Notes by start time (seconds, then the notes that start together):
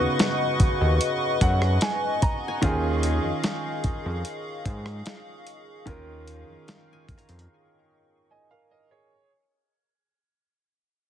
Already playing: C#3 B3 D#4 F#4 B4 D#5 F#5 G#5 C#6
0.19 snare, closed hi-hat
0.60 D#2, kick, closed hi-hat
0.81 D#2
1.01 closed hi-hat
1.41 F#2 F#5, kick, closed hi-hat
1.62 cross-stick
1.81 G#5, snare, closed hi-hat
2.22 D#5 A#5, kick, closed hi-hat
2.48 G#5
2.61 D#2 D#3 C#4 F4 G#4 F5, kick, closed hi-hat
3.03 closed hi-hat
3.24 F2
3.44 snare, closed hi-hat
3.84 F2, kick, closed hi-hat
4.06 F2
4.25 closed hi-hat
4.66 G#2, kick, closed hi-hat
4.86 cross-stick
5.06 snare, closed hi-hat
5.47 closed hi-hat
5.86 D#2 D#3 C#4 F4 A#4, kick, closed hi-hat
6.28 closed hi-hat
6.49 F2
6.68 F5, snare, closed hi-hat
6.93 G#5
7.09 F2, kick, closed hi-hat
7.18 A#5, closed hi-hat
7.29 F2, closed hi-hat
7.39 closed hi-hat
8.31 D#5 G#5
8.51 A#4 F5
8.71 A#4 D#5
8.91 G#4 C#5